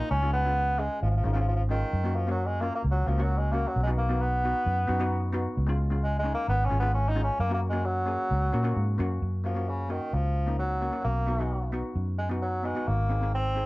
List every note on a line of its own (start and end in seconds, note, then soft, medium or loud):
0.11 0.88 C#2 medium
0.11 0.32 C#4 loud
0.22 0.36 G#3 medium
0.22 0.36 C#4 medium
0.22 0.37 F4 medium
0.33 0.80 B3 loud
0.45 0.66 G#3 medium
0.45 0.66 C#4 medium
0.45 0.66 F4 medium
0.78 1.06 G#3 medium
0.78 1.02 G#3 loud
0.78 1.06 C#4 medium
0.78 1.07 G#4 medium
1.02 1.22 G#1 loud
1.02 1.09 F3 medium
1.10 1.17 F3 medium
1.17 1.24 F3 medium
1.24 1.83 G#1 medium
1.24 1.32 F3 medium
1.24 1.31 G#3 medium
1.24 1.31 C#4 medium
1.24 1.32 D#4 medium
1.33 1.39 F3 medium
1.33 1.56 G#3 medium
1.33 1.56 C#4 medium
1.33 1.57 F4 medium
1.41 1.47 F3 medium
1.48 1.55 F3 medium
1.56 1.62 F3 medium
1.69 2.17 D#3 medium
1.69 1.90 G#3 medium
1.69 1.91 C#4 medium
1.69 1.91 F4 medium
1.94 2.70 F#2 medium
2.04 2.18 A#3 medium
2.04 2.18 C#4 medium
2.04 2.19 F#4 medium
2.16 2.30 F3 medium
2.27 2.47 F#3 medium
2.27 2.48 A#3 medium
2.27 2.48 C#4 medium
2.27 2.49 F#4 medium
2.46 2.63 G#3 medium
2.61 2.74 A#3 medium
2.61 2.89 A#3 medium
2.61 2.89 C#4 medium
2.61 2.89 F4 medium
2.75 2.82 A#3 medium
2.84 3.03 C#2 medium
2.91 3.08 F#3 medium
3.06 3.64 C#2 medium
3.06 3.23 F3 medium
3.06 3.13 A#3 medium
3.06 3.14 C#4 medium
3.06 3.14 F#4 medium
3.18 3.39 F#3 medium
3.18 3.39 A#3 medium
3.18 3.39 C#4 medium
3.18 3.39 F#4 medium
3.37 3.54 G#3 medium
3.52 3.72 A#3 medium
3.52 3.69 A#3 medium
3.52 3.73 C#4 medium
3.52 3.74 F#4 medium
3.68 3.83 F#3 medium
3.76 4.52 B1 loud
3.83 3.90 G#3 medium
3.83 4.00 B3 medium
3.87 4.00 D#4 medium
3.87 4.01 F#4 medium
3.98 4.22 A#3 medium
4.09 4.29 B3 medium
4.09 4.30 D#4 medium
4.09 4.30 F#4 medium
4.21 5.34 B3 medium
4.44 4.71 B3 medium
4.44 4.71 D#4 medium
4.44 4.71 F#4 medium
4.66 4.85 F#2 loud
4.87 5.46 F#2 medium
4.87 4.95 B3 medium
4.87 4.95 D#4 medium
4.87 4.96 F#4 medium
4.99 5.20 B3 medium
4.99 5.21 D#4 medium
4.99 5.21 F#4 loud
5.33 5.54 B3 medium
5.33 5.54 D#4 medium
5.33 5.55 F#4 loud
5.57 6.34 C#2 medium
5.67 5.81 G#3 medium
5.67 5.81 C#4 medium
5.67 5.82 F4 loud
5.90 6.11 G#3 medium
5.90 6.11 C#4 medium
5.90 6.12 F4 medium
6.04 6.17 G#3 medium
6.19 6.32 G#3 medium
6.23 6.52 G#3 medium
6.23 6.52 C#4 medium
6.23 6.53 D#4 medium
6.34 6.48 A#3 loud
6.48 6.67 G#1 loud
6.48 6.66 B3 loud
6.65 6.79 C#4 loud
6.70 7.29 G#1 medium
6.70 6.77 G#3 medium
6.70 6.78 C#4 medium
6.70 6.78 F4 medium
6.79 7.02 G#3 medium
6.79 6.93 B3 medium
6.79 7.02 C#4 medium
6.79 7.03 F4 medium
6.94 7.10 C#4 loud
7.09 7.23 D#4 loud
7.15 7.36 G#3 medium
7.15 7.37 C#4 medium
7.15 7.37 F4 medium
7.24 7.38 C#4 medium
7.40 8.16 F#2 loud
7.40 7.54 A#3 loud
7.49 7.63 A#3 medium
7.49 7.64 C#4 medium
7.49 7.64 F#4 medium
7.54 7.61 A#3 medium
7.69 7.86 G#3 medium
7.69 7.93 A#3 medium
7.69 7.93 C#4 medium
7.69 7.94 F#4 medium
7.85 8.99 F#3 medium
8.06 8.34 A#3 medium
8.06 8.34 C#4 medium
8.06 8.35 G#4 medium
8.31 8.50 C#2 loud
8.52 8.74 A#2 medium
8.52 8.60 A#3 medium
8.52 8.60 C#4 medium
8.52 8.60 F#4 medium
8.63 8.84 A#3 medium
8.63 8.85 C#4 medium
8.63 8.85 F#4 loud
8.77 8.97 G#2 medium
8.98 9.20 F#2 medium
8.98 9.19 A#3 medium
8.98 9.19 C#4 medium
8.98 9.20 F#4 loud
9.22 9.99 F#2 medium
9.44 9.70 F3 medium
9.44 9.51 A#3 medium
9.44 9.52 C#4 medium
9.44 9.52 F#4 medium
9.54 9.76 A#3 medium
9.54 9.76 C#4 medium
9.54 9.77 F#4 medium
9.69 9.92 C#3 medium
9.88 10.16 D#3 medium
9.88 10.24 A#3 medium
9.88 10.24 C#4 medium
9.88 10.24 F#4 medium
10.13 10.90 C#2 medium
10.13 10.58 F3 medium
10.46 10.67 A#3 medium
10.46 10.68 C#4 medium
10.46 10.68 D#4 medium
10.59 11.01 F#3 medium
10.81 10.88 A#3 medium
10.81 10.88 C#4 medium
10.81 10.89 F#4 medium
10.91 11.03 A#3 medium
10.91 11.04 C#4 medium
10.91 11.04 F#4 medium
11.04 11.82 B1 medium
11.04 11.69 A#3 medium
11.27 11.34 B3 medium
11.27 11.34 D#4 medium
11.27 11.35 F#4 medium
11.38 11.59 B3 medium
11.38 11.59 D#4 medium
11.38 11.60 F#4 medium
11.72 12.07 B3 medium
11.72 12.07 D#4 medium
11.72 12.08 F#4 medium
11.96 12.73 F#2 medium
12.18 12.29 G#3 medium
12.29 12.50 B3 medium
12.29 12.51 D#4 medium
12.29 12.51 F#4 medium
12.41 12.66 F#3 medium
12.63 12.89 G#3 medium
12.63 12.71 B3 medium
12.63 12.71 D#4 medium
12.63 12.72 F#4 medium
12.75 12.87 B3 medium
12.75 12.87 D#4 medium
12.75 12.87 F#4 medium
12.87 13.65 G#1 medium
12.87 13.33 A#3 loud
13.09 13.17 C4 medium
13.09 13.17 D#4 medium
13.09 13.18 G#4 medium
13.21 13.42 C4 medium
13.21 13.42 D#4 medium
13.21 13.43 G#4 medium
13.34 13.66 C4 loud
13.55 13.66 C4 medium
13.55 13.66 D#4 medium
13.55 13.66 G#4 medium